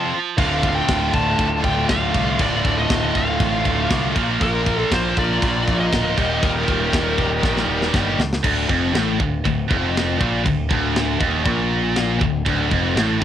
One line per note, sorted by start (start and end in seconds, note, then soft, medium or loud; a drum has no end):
0.00 0.11 F2 medium
0.00 0.11 C3 medium
0.00 0.39 F3 loud
0.05 0.13 C4 medium
0.05 0.13 F4 medium
0.37 0.80 D1 loud
0.37 2.37 D2 medium
0.37 2.38 A2 medium
0.37 2.39 D3 loud
0.37 0.47 A3 medium
0.37 0.47 F4 medium
0.37 0.68 F5 loud
0.37 kick loud
0.37 crash loud
0.48 0.53 A3 medium
0.48 0.54 F4 medium
0.54 0.61 A3 medium
0.54 0.62 F4 medium
0.63 0.70 A3 medium
0.63 0.70 F4 medium
0.63 kick medium
0.63 crash medium
0.69 0.77 A3 medium
0.69 0.78 F4 medium
0.69 0.75 F5 medium
0.75 0.85 A3 medium
0.75 0.85 F4 medium
0.75 1.14 G5 loud
0.85 1.09 D1 medium
0.85 0.93 A3 medium
0.85 0.93 F4 medium
0.85 kick loud
0.85 snare loud
0.85 crash medium
0.93 1.00 A3 medium
0.93 1.01 F4 medium
1.00 1.07 A3 medium
1.00 1.09 F4 medium
1.08 1.15 A3 medium
1.08 1.15 F4 medium
1.13 1.34 D1 medium
1.13 1.23 A3 medium
1.13 1.23 F4 medium
1.13 1.60 A5 loud
1.13 kick medium
1.13 crash medium
1.23 1.30 A3 medium
1.23 1.32 F4 medium
1.30 1.38 A3 medium
1.30 1.39 F4 medium
1.38 1.60 D1 loud
1.38 1.46 A3 medium
1.38 1.47 F4 medium
1.38 kick loud
1.38 crash medium
1.47 1.54 A3 medium
1.47 1.55 F4 medium
1.54 1.62 A3 medium
1.54 1.62 F4 medium
1.62 1.85 D1 medium
1.62 1.69 A3 medium
1.62 1.70 F4 medium
1.62 1.89 G5 loud
1.62 kick medium
1.62 crash medium
1.69 1.76 A3 medium
1.69 1.78 F4 medium
1.77 1.85 A3 medium
1.77 1.85 F4 medium
1.85 2.10 D1 medium
1.85 1.93 A3 medium
1.85 1.93 F4 medium
1.85 2.41 F5 loud
1.85 kick loud
1.85 snare loud
1.85 crash medium
1.93 1.99 A3 medium
1.93 2.01 F4 medium
1.99 2.07 A3 medium
1.99 2.09 F4 medium
2.08 2.16 A3 medium
2.08 2.16 F4 medium
2.14 2.36 C2 loud
2.14 2.23 A3 soft
2.14 2.24 F4 medium
2.14 kick loud
2.14 crash medium
2.24 2.31 A3 medium
2.24 2.31 F4 medium
2.31 2.39 A3 soft
2.31 2.40 F4 medium
2.39 2.61 D1 loud
2.39 4.14 D2 medium
2.39 4.15 A2 medium
2.39 4.16 D3 loud
2.39 2.47 A3 medium
2.39 2.49 F4 medium
2.39 2.78 D5 loud
2.39 kick loud
2.39 crash medium
2.48 2.55 A3 medium
2.48 2.57 F4 medium
2.55 2.63 A3 medium
2.55 2.65 F4 medium
2.63 2.86 D1 medium
2.63 2.71 A3 medium
2.63 2.72 F4 medium
2.63 kick medium
2.63 crash medium
2.71 2.78 A3 medium
2.71 2.80 F4 medium
2.78 2.86 A3 medium
2.78 2.89 F4 medium
2.78 3.17 D#5 medium
2.86 3.11 D1 medium
2.86 2.93 A3 medium
2.86 2.96 F4 medium
2.86 kick loud
2.86 crash medium
2.90 3.01 A3 medium
2.90 snare loud
2.97 3.04 F4 medium
3.02 3.09 A3 medium
3.02 3.12 F4 medium
3.10 3.17 A3 medium
3.10 3.19 F4 medium
3.15 3.36 D1 medium
3.15 3.25 A3 medium
3.15 4.13 F5 medium
3.15 kick medium
3.15 crash medium
3.20 3.27 F4 medium
3.25 3.31 A3 medium
3.29 3.39 A3 medium
3.29 3.34 F4 medium
3.34 3.42 F4 medium
3.40 3.61 A1 medium
3.40 3.47 A3 medium
3.40 3.51 F4 medium
3.40 kick loud
3.40 crash medium
3.48 3.56 A3 medium
3.48 3.59 F4 medium
3.56 3.61 A3 medium
3.56 3.67 F4 medium
3.62 3.86 D1 medium
3.62 3.69 A3 medium
3.62 kick medium
3.62 crash medium
3.67 3.78 A3 medium
3.67 3.74 F4 medium
3.75 3.86 A3 medium
3.75 3.82 F4 medium
3.83 3.93 A3 medium
3.83 3.90 F4 medium
3.90 4.12 C2 loud
3.90 4.01 A3 medium
3.90 3.97 F4 medium
3.90 kick loud
3.90 snare loud
3.90 crash medium
3.97 4.09 A3 medium
3.97 4.05 F4 medium
4.07 4.17 A3 medium
4.07 4.15 F4 medium
4.14 4.37 A#1 loud
4.14 6.15 A#2 loud
4.14 6.16 F3 loud
4.14 6.17 A#3 loud
4.14 4.23 F4 medium
4.14 4.24 A#4 medium
4.14 kick loud
4.14 crash medium
4.23 4.31 F4 medium
4.23 4.31 A#4 medium
4.31 4.38 F4 medium
4.31 4.39 A#4 medium
4.38 4.83 A#1 loud
4.38 4.46 F4 medium
4.38 4.47 A#4 medium
4.38 kick loud
4.38 crash loud
4.43 4.53 F4 medium
4.43 4.77 A#4 loud
4.47 4.55 A#4 medium
4.54 4.61 F4 medium
4.54 4.63 A#4 medium
4.62 4.69 F4 medium
4.62 4.71 A#4 medium
4.66 4.77 F4 medium
4.66 kick medium
4.66 crash medium
4.71 4.78 A#4 medium
4.77 4.83 F4 medium
4.77 4.89 A4 loud
4.77 4.85 A#4 medium
4.84 4.92 F4 medium
4.84 4.93 A#4 medium
4.91 5.12 A#1 medium
4.91 5.00 F4 medium
4.91 5.01 A#4 medium
4.91 5.16 C5 medium
4.91 kick loud
4.91 snare loud
4.91 crash medium
5.00 5.08 F4 medium
5.00 5.09 A#4 medium
5.09 5.17 F4 medium
5.09 5.17 A#4 medium
5.17 5.38 A#1 medium
5.17 5.24 F4 medium
5.17 5.24 A#4 medium
5.17 5.77 D5 loud
5.17 kick medium
5.17 crash medium
5.25 5.31 F4 medium
5.25 5.33 A#4 medium
5.31 5.38 F4 medium
5.31 5.40 A#4 medium
5.39 5.63 A#1 loud
5.39 5.46 F4 medium
5.39 5.47 A#4 medium
5.39 kick loud
5.39 crash medium
5.47 5.54 F4 medium
5.47 5.55 A#4 medium
5.56 5.62 F4 medium
5.56 5.63 A#4 medium
5.63 5.70 F4 medium
5.63 5.71 A#4 medium
5.67 5.88 A#1 medium
5.67 5.77 F4 medium
5.67 5.78 A#4 medium
5.67 kick medium
5.67 crash medium
5.78 5.85 F4 medium
5.78 5.87 A#4 medium
5.78 6.45 D#5 loud
5.85 5.93 F4 medium
5.85 5.93 A#4 medium
5.92 6.14 D1 medium
5.92 6.01 F4 medium
5.92 6.01 A#4 medium
5.92 kick loud
5.92 snare loud
5.92 crash medium
6.02 6.09 F4 medium
6.02 6.10 A#4 medium
6.09 6.17 F4 medium
6.09 6.18 A#4 medium
6.16 6.39 D#1 medium
6.16 8.17 D#2 medium
6.16 8.18 A#2 loud
6.16 8.18 D#3 loud
6.16 6.24 G3 medium
6.16 6.26 G4 loud
6.16 kick medium
6.16 crash medium
6.25 6.32 G3 medium
6.25 6.33 G4 medium
6.34 6.40 G3 medium
6.34 6.41 G4 medium
6.41 6.64 D#1 loud
6.41 6.48 G3 medium
6.41 6.49 G4 medium
6.41 7.90 A#4 medium
6.41 kick loud
6.41 crash medium
6.49 6.56 G3 medium
6.49 6.57 G4 medium
6.56 6.64 G3 medium
6.56 6.65 G4 medium
6.65 6.89 D#1 loud
6.65 6.71 G3 medium
6.65 6.72 G4 medium
6.65 kick medium
6.65 crash medium
6.72 6.79 G3 medium
6.72 6.79 G4 medium
6.79 6.87 G3 medium
6.79 6.87 G4 medium
6.88 6.95 G3 medium
6.88 6.95 G4 medium
6.93 7.14 D#1 medium
6.93 7.02 G3 medium
6.93 7.02 G4 medium
6.93 kick loud
6.93 snare loud
6.93 crash medium
7.02 7.11 G3 medium
7.02 7.09 G4 medium
7.10 7.18 G3 medium
7.10 7.18 G4 loud
7.18 7.39 D#1 medium
7.18 7.26 G3 medium
7.18 7.26 G4 medium
7.18 kick medium
7.18 crash medium
7.26 7.33 G3 medium
7.26 7.34 G4 loud
7.33 7.41 G3 medium
7.33 7.42 G4 medium
7.42 7.64 A#1 loud
7.42 7.49 G3 medium
7.42 7.49 G4 medium
7.42 kick loud
7.42 snare medium
7.50 7.56 G3 medium
7.50 7.57 G4 medium
7.56 7.64 G3 medium
7.56 7.65 G4 medium
7.56 snare medium
7.64 7.89 D#1 medium
7.64 7.72 G3 medium
7.64 7.73 G4 medium
7.72 7.80 G3 medium
7.72 7.80 G4 medium
7.80 7.88 G3 medium
7.80 7.88 G4 medium
7.80 snare medium
7.88 7.96 G3 medium
7.88 7.96 G4 medium
7.94 8.15 G1 medium
7.94 8.03 G3 medium
7.94 8.03 G4 medium
7.94 kick loud
7.94 snare medium
8.04 8.11 G3 medium
8.04 8.11 G4 medium
8.12 8.20 G3 medium
8.12 8.19 G4 medium
8.19 8.40 C#2 loud
8.19 snare loud
8.33 snare loud
8.43 8.68 D1 medium
8.43 8.68 D2 medium
8.43 8.69 D2 loud
8.43 kick loud
8.43 crash loud
8.43 crash medium
8.69 8.92 F1 loud
8.69 8.94 F2 loud
8.69 kick loud
8.93 9.17 A1 medium
8.93 9.19 A2 loud
8.93 snare loud
8.93 crash medium
9.19 9.43 D1 medium
9.19 9.40 D2 medium
9.19 kick loud
9.44 9.68 D1 medium
9.44 9.65 D2 medium
9.44 kick medium
9.44 crash medium
9.68 10.17 F1 medium
9.68 10.17 F2 loud
9.68 10.20 F2 loud
9.68 kick loud
9.97 snare loud
9.97 crash medium
10.17 10.44 A#1 medium
10.17 10.43 A#2 loud
10.17 10.45 A#2 loud
10.17 kick loud
10.44 10.69 D1 medium
10.44 10.65 D2 medium
10.44 10.66 D2 medium
10.44 kick loud
10.44 crash medium
10.69 11.18 D1 loud
10.69 11.19 D2 loud
10.69 11.20 D2 loud
10.69 kick loud
10.96 snare loud
10.96 crash medium
11.19 11.44 D#1 medium
11.19 11.43 D#2 loud
11.19 11.46 D#2 loud
11.19 kick loud
11.44 12.17 A#1 loud
11.44 12.19 A#2 loud
11.44 12.21 A#2 loud
11.44 kick loud
11.44 crash medium
11.96 snare loud
11.96 crash medium
12.19 12.44 D1 medium
12.19 12.40 D2 medium
12.19 12.42 D2 medium
12.19 kick loud
12.45 12.70 D1 medium
12.45 12.70 D2 loud
12.45 12.72 D2 loud
12.45 kick loud
12.45 crash medium
12.71 12.94 F1 medium
12.71 12.95 F2 loud
12.71 12.97 F2 loud
12.71 kick loud
12.95 13.19 A1 medium
12.95 13.20 A2 loud
12.95 13.21 A2 loud
12.95 snare loud
12.95 crash medium
13.21 13.24 D2 medium